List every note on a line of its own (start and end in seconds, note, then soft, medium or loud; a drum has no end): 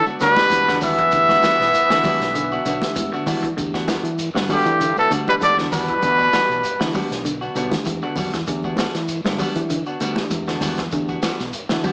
0.00 0.15 D3 medium
0.06 0.20 B3 soft
0.06 0.20 D4 soft
0.06 0.21 F#4 medium
0.06 high conga medium
0.06 shekere soft
0.20 0.34 D2 medium
0.20 0.78 B2 medium
0.20 0.46 D3 medium
0.20 0.78 G3 medium
0.20 0.40 G3 medium
0.20 0.40 B3 medium
0.20 0.40 D4 medium
0.20 0.40 F#4 medium
0.20 0.79 B4 loud
0.20 snare soft
0.20 closed hi-hat soft
0.20 shekere medium
0.36 0.67 E3 medium
0.36 0.67 A3 medium
0.36 0.67 D4 medium
0.36 0.67 G4 medium
0.36 muted fingered electric bass stroke soft
0.36 snare soft
0.36 high conga loud
0.36 shekere soft
0.50 0.77 E2 medium
0.50 closed hi-hat medium
0.50 high conga medium
0.50 shekere loud
0.67 0.93 D3 medium
0.67 0.82 B3 soft
0.67 0.82 D4 medium
0.67 0.82 F#4 medium
0.67 snare soft
0.67 shekere soft
0.81 1.07 E2 medium
0.81 3.22 E3 medium
0.81 1.02 G3 medium
0.81 3.22 B3 medium
0.81 1.02 B3 medium
0.81 1.02 D4 medium
0.81 1.02 F#4 medium
0.81 kick medium
0.81 open hi-hat medium
0.81 high conga medium
0.81 low conga medium
0.81 shekere medium
0.85 3.24 E5 loud
0.98 1.10 E3 medium
0.98 kick medium
0.98 closed hi-hat medium
0.98 shekere soft
1.11 1.37 E2 medium
1.11 1.38 D3 medium
1.11 1.49 E3 medium
1.11 1.49 A3 medium
1.11 1.49 D4 medium
1.11 1.49 G4 medium
1.11 kick medium
1.11 closed hi-hat medium
1.11 shekere loud
1.29 1.44 B3 soft
1.29 1.43 D4 soft
1.29 1.43 F#4 medium
1.29 kick medium
1.29 snare soft
1.29 high conga medium
1.29 shekere soft
1.43 1.69 E3 medium
1.43 1.63 G3 medium
1.43 1.63 B3 medium
1.43 1.63 D4 medium
1.43 1.64 F#4 medium
1.43 muted fingered electric bass stroke soft
1.43 snare medium
1.43 closed hi-hat medium
1.43 high conga medium
1.43 shekere medium
1.59 1.71 B1 medium
1.59 snare soft
1.59 shekere soft
1.74 closed hi-hat medium
1.74 shekere medium
1.90 2.02 D3 medium
1.90 2.02 E3 medium
1.90 2.05 B3 soft
1.90 2.05 D4 soft
1.90 2.05 F#4 medium
1.90 snare medium
1.90 shekere soft
2.04 2.34 E3 medium
2.04 2.29 F#3 medium
2.04 2.24 G3 medium
2.04 2.35 A3 medium
2.04 2.24 B3 medium
2.04 2.35 D4 medium
2.04 2.24 D4 medium
2.04 2.25 F#4 medium
2.04 2.35 G4 medium
2.04 kick medium
2.04 open hi-hat medium
2.04 high conga medium
2.04 low conga medium
2.04 shekere medium
2.20 2.57 B1 medium
2.20 snare soft
2.20 closed hi-hat medium
2.20 shekere soft
2.35 2.60 D3 medium
2.35 closed hi-hat medium
2.35 shekere medium
2.51 2.65 B3 soft
2.51 2.66 D4 medium
2.51 2.66 F#4 medium
2.51 shekere soft
2.65 2.79 B1 medium
2.65 2.91 D3 medium
2.65 2.85 B3 medium
2.65 2.86 D4 medium
2.65 2.86 F#4 medium
2.65 closed hi-hat medium
2.65 shekere medium
2.81 3.12 E3 medium
2.81 3.12 A3 loud
2.81 3.12 D4 medium
2.81 3.12 G4 loud
2.81 muted fingered electric bass stroke soft
2.81 snare soft
2.81 closed hi-hat medium
2.81 high conga loud
2.81 shekere soft
2.96 3.10 E2 medium
2.96 3.09 E3 medium
2.96 kick medium
2.96 closed hi-hat medium
2.96 high conga medium
2.96 shekere loud
3.13 3.37 D3 medium
3.13 3.26 B3 medium
3.13 3.27 D4 medium
3.13 3.27 F#4 medium
3.13 shekere soft
3.26 3.52 E3 medium
3.26 3.46 G3 medium
3.26 3.46 B3 medium
3.26 3.47 D4 medium
3.26 3.47 F#4 medium
3.26 kick medium
3.26 open hi-hat medium
3.26 high conga medium
3.26 low conga medium
3.26 shekere medium
3.43 3.54 E3 medium
3.43 kick medium
3.43 closed hi-hat soft
3.43 shekere soft
3.57 3.96 E2 loud
3.57 3.82 D3 medium
3.57 3.93 E3 medium
3.57 3.94 A3 medium
3.57 3.94 D4 medium
3.57 3.94 G4 medium
3.57 kick medium
3.57 closed hi-hat medium
3.57 shekere medium
3.74 3.88 B3 soft
3.74 3.88 D4 medium
3.74 3.88 F#4 medium
3.74 kick medium
3.74 snare soft
3.74 shekere soft
3.88 4.13 E3 medium
3.88 4.08 G3 medium
3.88 4.08 B3 medium
3.88 4.08 D4 medium
3.88 4.08 F#4 medium
3.88 snare medium
3.88 closed hi-hat medium
3.88 high conga loud
3.88 shekere medium
4.03 4.29 E3 medium
4.03 closed hi-hat medium
4.03 shekere soft
4.19 closed hi-hat medium
4.19 shekere medium
4.35 4.46 G2 medium
4.35 4.47 D3 medium
4.35 4.49 B3 soft
4.35 4.49 D4 soft
4.35 4.50 F#4 medium
4.35 snare medium
4.35 shekere soft
4.48 4.94 G2 medium
4.48 4.94 D3 medium
4.48 4.79 E3 medium
4.48 4.69 G3 medium
4.48 4.75 G3 medium
4.48 4.79 A3 medium
4.48 4.69 B3 medium
4.48 4.79 D4 medium
4.48 4.69 D4 medium
4.48 4.69 F#4 medium
4.48 4.80 G4 medium
4.48 kick medium
4.48 open hi-hat medium
4.48 high conga medium
4.48 low conga medium
4.48 shekere medium
4.53 4.95 G4 medium
4.65 4.91 E3 medium
4.65 closed hi-hat medium
4.65 shekere soft
4.80 5.05 D3 loud
4.80 closed hi-hat medium
4.80 shekere medium
4.97 5.11 A2 medium
4.97 5.11 E3 medium
4.97 5.12 B3 soft
4.97 5.10 D4 soft
4.97 5.11 F#4 medium
4.97 5.12 A4 medium
4.97 high conga medium
4.97 shekere soft
5.10 5.24 D2 medium
5.10 5.36 D3 medium
5.10 5.30 G3 medium
5.10 5.30 D4 medium
5.10 5.31 F#4 medium
5.10 closed hi-hat medium
5.10 shekere medium
5.27 5.33 B2 medium
5.27 5.57 E3 medium
5.27 5.35 G3 medium
5.27 5.57 A3 medium
5.27 5.57 D4 medium
5.27 5.58 G4 medium
5.27 5.35 B4 medium
5.27 muted fingered electric bass stroke soft
5.27 high conga loud
5.27 shekere soft
5.40 5.66 E2 medium
5.40 5.54 D3 medium
5.40 5.55 E3 medium
5.40 5.56 G3 medium
5.40 5.57 D5 loud
5.40 closed hi-hat medium
5.40 high conga medium
5.40 shekere medium
5.57 5.83 D3 medium
5.57 5.71 B3 soft
5.57 5.71 D4 soft
5.57 5.72 F#4 medium
5.57 snare soft
5.57 shekere soft
5.72 5.97 E2 medium
5.72 6.90 B2 medium
5.72 5.91 G3 medium
5.72 6.91 G3 medium
5.72 5.91 B3 medium
5.72 5.92 D4 medium
5.72 5.92 F#4 medium
5.72 6.91 B4 loud
5.72 kick medium
5.72 snare soft
5.72 open hi-hat medium
5.72 low conga medium
5.72 shekere medium
5.88 6.01 E3 medium
5.88 kick medium
5.88 closed hi-hat soft
5.88 shekere soft
6.02 6.27 E2 loud
6.02 6.28 D3 medium
6.02 6.39 E3 medium
6.02 6.39 A3 medium
6.02 6.39 D4 medium
6.02 6.39 G4 medium
6.02 kick medium
6.02 closed hi-hat medium
6.02 shekere medium
6.18 6.31 B3 soft
6.18 6.33 D4 soft
6.18 6.32 F#4 medium
6.18 kick medium
6.18 shekere soft
6.32 6.58 E3 medium
6.32 6.52 G3 medium
6.32 6.52 B3 medium
6.32 6.53 F#4 medium
6.32 muted fingered electric bass stroke soft
6.32 snare medium
6.32 closed hi-hat soft
6.32 high conga medium
6.32 shekere medium
6.50 6.61 B1 medium
6.50 shekere soft
6.64 closed hi-hat medium
6.64 shekere medium
6.80 6.92 D3 medium
6.80 6.92 E3 medium
6.80 6.93 B3 soft
6.80 6.94 D4 soft
6.80 6.94 F#4 medium
6.80 snare medium
6.80 high conga medium
6.80 shekere soft
6.94 7.24 E3 medium
6.94 7.20 F#3 medium
6.94 7.14 G3 medium
6.94 7.24 A3 medium
6.94 7.14 B3 medium
6.94 7.25 D4 medium
6.94 7.14 D4 medium
6.94 7.14 F#4 medium
6.94 7.25 G4 medium
6.94 kick medium
6.94 open hi-hat medium
6.94 high conga medium
6.94 low conga medium
6.94 shekere medium
7.11 7.47 B1 medium
7.11 snare soft
7.11 closed hi-hat medium
7.11 shekere soft
7.25 7.50 D3 loud
7.25 closed hi-hat medium
7.25 shekere medium
7.41 7.56 B3 medium
7.41 7.56 D4 soft
7.41 7.56 F#4 medium
7.41 shekere soft
7.55 7.69 B1 medium
7.55 7.81 D3 medium
7.55 7.75 G3 medium
7.55 7.76 B3 medium
7.55 7.76 D4 medium
7.55 7.76 F#4 medium
7.55 closed hi-hat medium
7.55 shekere medium
7.71 8.02 E3 loud
7.71 8.02 A3 medium
7.71 8.02 D4 medium
7.71 8.03 G4 loud
7.71 muted fingered electric bass stroke soft
7.71 snare soft
7.71 closed hi-hat medium
7.71 high conga loud
7.71 low conga medium
7.71 shekere soft
7.85 8.00 E2 medium
7.85 8.00 E3 medium
7.85 kick medium
7.85 closed hi-hat medium
7.85 high conga medium
7.85 shekere medium
8.02 8.28 D3 medium
8.02 8.16 B3 medium
8.02 8.17 D4 medium
8.02 8.17 F#4 medium
8.02 shekere soft
8.16 8.32 F#2 medium
8.16 8.37 G3 medium
8.16 8.37 B3 medium
8.16 8.37 D4 medium
8.16 8.37 F#4 medium
8.16 kick medium
8.16 open hi-hat medium
8.16 low conga medium
8.16 shekere medium
8.33 8.46 E2 medium
8.33 8.45 E3 medium
8.33 kick medium
8.33 snare soft
8.33 closed hi-hat medium
8.33 shekere soft
8.47 8.86 E2 medium
8.47 8.72 D3 loud
8.47 8.84 E3 medium
8.47 8.84 A3 medium
8.47 8.84 D4 medium
8.47 8.84 G4 medium
8.47 kick medium
8.47 closed hi-hat medium
8.47 shekere medium
8.63 8.78 B3 medium
8.63 8.78 D4 medium
8.63 8.79 F#4 medium
8.63 kick medium
8.63 high conga medium
8.63 shekere soft
8.77 9.03 E3 medium
8.77 8.98 G3 medium
8.77 8.98 B3 medium
8.77 8.98 D4 medium
8.77 8.98 F#4 medium
8.77 snare medium
8.77 closed hi-hat medium
8.77 high conga medium
8.77 shekere medium
8.94 9.20 E3 medium
8.94 snare soft
8.94 closed hi-hat medium
8.94 shekere soft
9.08 closed hi-hat medium
9.08 shekere loud
9.24 9.37 G2 medium
9.24 9.37 D3 medium
9.24 9.39 B3 soft
9.24 9.39 D4 medium
9.24 9.40 F#4 soft
9.24 snare medium
9.24 high conga medium
9.24 shekere soft
9.38 9.69 E3 medium
9.38 9.65 F#3 medium
9.38 9.59 G3 medium
9.38 9.69 A3 medium
9.38 9.59 B3 medium
9.38 9.69 D4 medium
9.38 9.59 D4 medium
9.38 9.60 F#4 medium
9.38 9.70 G4 medium
9.38 kick medium
9.38 open hi-hat medium
9.38 high conga medium
9.38 low conga medium
9.38 shekere medium
9.56 9.81 E3 medium
9.56 closed hi-hat medium
9.56 shekere soft
9.70 9.95 D3 loud
9.70 closed hi-hat medium
9.70 shekere medium
9.86 10.00 B3 soft
9.86 10.01 D4 medium
9.86 10.01 F#4 medium
9.86 shekere soft
10.00 10.14 D2 medium
10.00 10.26 D3 medium
10.00 10.20 G3 medium
10.00 10.21 B3 medium
10.00 10.21 D4 medium
10.00 10.21 F#4 medium
10.00 closed hi-hat medium
10.00 shekere medium
10.16 10.46 E3 medium
10.16 10.47 A3 medium
10.16 10.47 D4 medium
10.16 10.47 G4 medium
10.16 muted fingered electric bass stroke soft
10.16 snare soft
10.16 high conga loud
10.16 shekere soft
10.30 10.56 E2 medium
10.30 10.45 E3 medium
10.30 closed hi-hat medium
10.30 high conga medium
10.30 shekere medium
10.47 10.73 D3 medium
10.47 10.61 B3 medium
10.47 10.61 D4 medium
10.47 10.61 F#4 medium
10.47 snare soft
10.47 shekere soft
10.61 10.87 E2 medium
10.61 10.81 G3 medium
10.61 10.81 B3 medium
10.61 10.82 D4 medium
10.61 10.82 F#4 medium
10.61 kick medium
10.61 snare soft
10.61 open hi-hat medium
10.61 high conga medium
10.61 low conga medium
10.61 shekere medium
10.78 10.90 E3 medium
10.78 kick medium
10.78 snare soft
10.78 closed hi-hat medium
10.78 shekere soft
10.91 11.17 E2 loud
10.91 11.18 D3 loud
10.91 11.28 E3 medium
10.91 11.29 A3 medium
10.91 11.29 D4 medium
10.91 11.29 G4 medium
10.91 kick medium
10.91 closed hi-hat medium
10.91 shekere medium
11.09 11.22 B3 soft
11.09 11.22 D4 soft
11.09 11.23 F#4 medium
11.09 kick medium
11.09 shekere soft
11.22 11.48 E3 medium
11.22 11.42 G3 medium
11.22 11.43 B3 medium
11.22 11.43 D4 medium
11.22 11.43 F#4 medium
11.22 muted fingered electric bass stroke soft
11.22 snare medium
11.22 closed hi-hat soft
11.22 high conga loud
11.22 shekere medium
11.39 11.52 B1 medium
11.39 snare soft
11.39 shekere soft
11.53 closed hi-hat medium
11.53 shekere medium
11.69 11.82 D3 medium
11.69 11.83 E3 medium
11.69 11.84 B3 soft
11.69 11.84 D4 medium
11.69 11.85 F#4 medium
11.69 snare medium
11.69 shekere soft
11.84 11.92 E3 medium
11.84 11.92 F#3 medium
11.84 11.92 G3 medium
11.84 11.92 A3 medium
11.84 11.92 B3 medium
11.84 11.92 D4 medium
11.84 11.92 F#4 medium
11.84 11.92 G4 medium
11.84 kick medium
11.84 open hi-hat medium
11.84 high conga medium
11.84 low conga medium
11.84 shekere medium